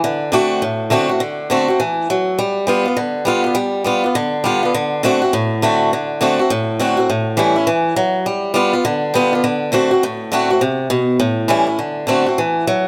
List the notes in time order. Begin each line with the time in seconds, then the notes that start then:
0.04 D3
0.32 D3 A3 C4 F#4
0.62 A2
0.90 D3 A3 C4 F#4
1.09 C4 F#4
1.20 D3
1.50 D3 A3 C4 F#4
1.68 C4 F#4
1.80 E3
2.10 F#3
2.39 G3
2.67 G3 B3 F4
2.85 B3 F4
2.97 D3
3.25 G3 B3 F4
3.44 B3 F4
3.55 G3
3.84 G3 B3 F4
4.04 B3 F4
4.15 D3
4.44 G3 B3 F4
4.63 B3 F4
4.74 D3
5.03 D3 A3 C4 F#4
5.22 C4 F#4
5.33 A2
5.62 D3 A3 C4 F#4
5.93 D3
6.21 D3 A3 C4 F#4
6.39 C4 F#4
6.50 A2
6.79 D3 A3 C4 F#4
6.97 C4 F#4
7.10 A2
7.37 E3 G3 C#4 E4
7.56 C#4 E4
7.67 E3
7.96 F#3
8.26 G3
8.54 G3 B3 F4
8.73 B3 F4
8.85 D3
9.14 G3 B3 F4
9.33 B3 F4
9.44 D3
9.72 D3 A3 C4 F#4
9.91 C4 F#4
10.03 A2
10.32 D3 A3 C4 F#4
10.51 C4 F#4
10.61 C3
10.90 B2
11.20 A2
11.48 E3 G3 C#4 E4
11.67 C#4 E4
11.79 D3
12.07 D3 A3 C4 F#4
12.26 C4 F#4
12.38 E3
12.67 F#3